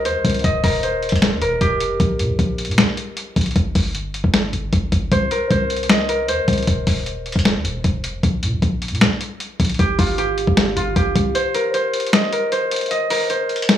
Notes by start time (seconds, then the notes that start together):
Already playing: F4 G4 A#4 D#5
0.05 D#2 C5, closed hi-hat
0.15 C2
0.25 C2, kick, closed hi-hat
0.30 closed hi-hat
0.34 closed hi-hat
0.39 closed hi-hat
0.44 D#1 D#5, kick, closed hi-hat
0.64 D#1 A#4, kick, open hi-hat
0.83 C5, closed hi-hat
1.03 closed hi-hat
1.09 D#1, kick, closed hi-hat
1.16 closed hi-hat
1.22 finger snap, snare, closed hi-hat
1.32 D#2
1.42 D#1 A#4, closed hi-hat
1.61 D#1 G4, kick, closed hi-hat
1.80 F1, closed hi-hat
2.00 A#1, kick, closed hi-hat
2.19 A#2, closed hi-hat
2.29 A#1
2.39 A#1, kick, closed hi-hat
2.58 closed hi-hat
2.65 A#2, closed hi-hat
2.71 closed hi-hat
2.78 finger snap, snare, closed hi-hat
2.83 A#1
2.97 closed hi-hat
3.17 closed hi-hat
3.36 A#1, kick, closed hi-hat
3.41 closed hi-hat
3.46 closed hi-hat
3.51 closed hi-hat
3.56 G1, kick, closed hi-hat
3.75 G1, kick, open hi-hat
3.95 closed hi-hat
4.14 closed hi-hat
4.24 G1, kick
4.34 finger snap, snare, closed hi-hat
4.53 G1, closed hi-hat
4.73 G1, kick, closed hi-hat
4.92 G1, kick, closed hi-hat
5.12 C2 C5, kick, closed hi-hat
5.31 A#4, closed hi-hat
5.51 C2 C5, kick, closed hi-hat
5.70 closed hi-hat
5.77 closed hi-hat
5.83 closed hi-hat
5.89 D#5, finger snap, snare, closed hi-hat
6.09 A#4, closed hi-hat
6.28 D#2 C5, closed hi-hat
6.38 C2
6.48 C2, kick, closed hi-hat
6.53 closed hi-hat
6.58 closed hi-hat
6.63 closed hi-hat
6.67 D#1, kick, closed hi-hat
6.87 D#1, kick, open hi-hat
7.06 closed hi-hat
7.26 closed hi-hat
7.32 D#1, kick, closed hi-hat
7.39 closed hi-hat
7.45 finger snap, snare, closed hi-hat
7.55 D#2
7.65 D#1, closed hi-hat
7.84 D#1, kick, closed hi-hat
8.04 F1, closed hi-hat
8.23 A#1, kick, closed hi-hat
8.43 A#2, closed hi-hat
8.52 A#1
8.62 A#1, kick, closed hi-hat
8.82 closed hi-hat
8.88 A#2, closed hi-hat
8.95 closed hi-hat
9.01 finger snap, snare, closed hi-hat
9.06 A#1
9.21 closed hi-hat
9.40 closed hi-hat
9.60 A#1, kick, closed hi-hat
9.65 closed hi-hat
9.69 closed hi-hat
9.74 closed hi-hat
9.79 G1 G4, kick, closed hi-hat
9.99 G1 F4, kick, open hi-hat
10.18 G4, closed hi-hat
10.38 closed hi-hat
10.47 G1, kick
10.57 finger snap, snare, closed hi-hat
10.77 G1 F4, closed hi-hat
10.96 G1 G4, kick, closed hi-hat
11.16 C2, kick, closed hi-hat
11.35 C5, closed hi-hat
11.55 A#4, closed hi-hat
11.74 C5, closed hi-hat
11.94 closed hi-hat
12.00 closed hi-hat
12.07 closed hi-hat
12.13 D#5, finger snap, snare, closed hi-hat
12.32 A#4, closed hi-hat
12.52 C5, closed hi-hat
12.71 closed hi-hat
12.76 closed hi-hat
12.81 closed hi-hat
12.86 closed hi-hat
12.91 D#5, closed hi-hat
13.10 A#4, open hi-hat
13.30 C5, closed hi-hat
13.49 closed hi-hat
13.56 closed hi-hat
13.62 closed hi-hat
13.69 finger snap, snare, closed hi-hat